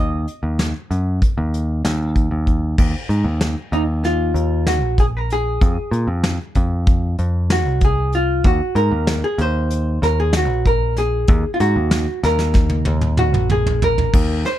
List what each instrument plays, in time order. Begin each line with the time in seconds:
Already playing: picked electric bass D#2, hollow-body jazz guitar D#5
0.28 closed hi-hat
0.43 picked electric bass D#2
0.59 snare, closed hi-hat
0.91 picked electric bass F#2, closed hi-hat
1.22 kick, closed hi-hat
1.38 picked electric bass D#2
1.54 closed hi-hat
1.85 picked electric bass D#2, snare, closed hi-hat
2.16 kick, closed hi-hat
2.31 picked electric bass D#2
2.47 kick, closed hi-hat
2.78 picked electric bass D#2, kick, crash
3.09 picked electric bass G#2, closed hi-hat
3.24 picked electric bass D#2
3.41 snare, closed hi-hat
3.72 picked electric bass D#2, hollow-body jazz guitar D#4, closed hi-hat
4.04 hollow-body jazz guitar F4, snare, closed hi-hat
4.34 picked electric bass D#2, closed hi-hat
4.67 hollow-body jazz guitar F#4, snare, closed hi-hat
4.83 picked electric bass A#1
4.98 hollow-body jazz guitar G#4, kick, closed hi-hat
5.17 hollow-body jazz guitar A#4
5.30 hollow-body jazz guitar G#4, closed hi-hat
5.61 picked electric bass F2, kick, closed hi-hat
5.91 picked electric bass A#2, closed hi-hat
6.07 picked electric bass F2
6.24 snare, closed hi-hat
6.55 picked electric bass F2, kick, closed hi-hat
6.87 kick, closed hi-hat
7.18 picked electric bass F2, closed hi-hat
7.50 hollow-body jazz guitar F#4, snare, closed hi-hat
7.66 picked electric bass C2
7.81 hollow-body jazz guitar G#4, kick, closed hi-hat
8.12 hollow-body jazz guitar F4, closed hi-hat
8.44 picked electric bass D#2, hollow-body jazz guitar F#4, kick, closed hi-hat
8.75 picked electric bass G#2, hollow-body jazz guitar A#4, closed hi-hat
8.91 picked electric bass D#2
9.07 snare, closed hi-hat
9.24 hollow-body jazz guitar G#4
9.38 picked electric bass D#2, hollow-body jazz guitar C5, closed hi-hat
9.70 closed hi-hat
10.02 picked electric bass D#2, hollow-body jazz guitar A#4, snare, closed hi-hat
10.20 hollow-body jazz guitar G#4
10.33 hollow-body jazz guitar F#4, snare, closed hi-hat
10.49 picked electric bass A#1
10.66 hollow-body jazz guitar A#4, kick, closed hi-hat
10.97 hollow-body jazz guitar G#4, snare, closed hi-hat
11.27 picked electric bass D#2, kick, closed hi-hat
11.54 hollow-body jazz guitar F4
11.60 picked electric bass G#2, hollow-body jazz guitar F#4, closed hi-hat
11.76 picked electric bass D#2
11.91 snare, closed hi-hat
12.23 picked electric bass D#2, hollow-body jazz guitar A#4, snare
12.39 snare
12.54 kick, snare
12.69 high tom
12.85 picked electric bass D#2, high tom
13.01 mid tom
13.17 hollow-body jazz guitar F#4, mid tom
13.34 picked electric bass A#1, mid tom
13.50 hollow-body jazz guitar G#4, mid tom
13.66 floor tom
13.82 hollow-body jazz guitar A#4, floor tom
13.98 floor tom
14.14 picked electric bass D#2, kick, crash
14.45 hollow-body jazz guitar C5, snare, closed hi-hat